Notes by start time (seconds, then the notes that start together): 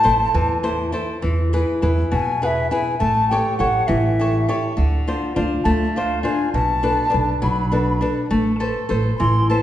Already playing: A5
0.03 A1 E4 A4 C5
0.34 E2 E3
0.63 E4 A4 C5
0.92 E4 A4 C5
1.22 E2 E3
1.53 E4 G#4 B4
1.82 E2 E4 G#4 B4
2.12 E2 B2 G#5
2.42 E4 G#4 B4 E5
2.71 E4 G#4 B4 G#5
2.99 A1 A3 A5
3.29 G4 A4 C#5 G5
3.58 A1 G4 A4 C#5 F#5
3.87 A1 E3 E5
4.19 G4 A4 C#5
4.49 G4 A4 C#5
4.77 D2 D3
5.07 D4 F4 C5
5.36 D2 D4 F4 C5
5.64 D2 A3 A5
5.96 D4 F4 C5 F5
6.23 D4 F4 C5 G#5
6.53 B1 B2 A5
6.83 D4 A4 B4
7.10 D4 A4 B4
7.14 B1
7.42 B1 F#3 B5
7.50 B5
7.60 B5
7.68 D4 A4 B5
7.72 B4 B5
7.81 B5
7.90 B5
7.96 B5
8.01 D4 A4 B4
8.31 A1 A3
8.60 A4 B4 C5
8.89 A1 A4 B4 C5
9.19 A1 E3 C6
9.50 A4 B4 C5 A5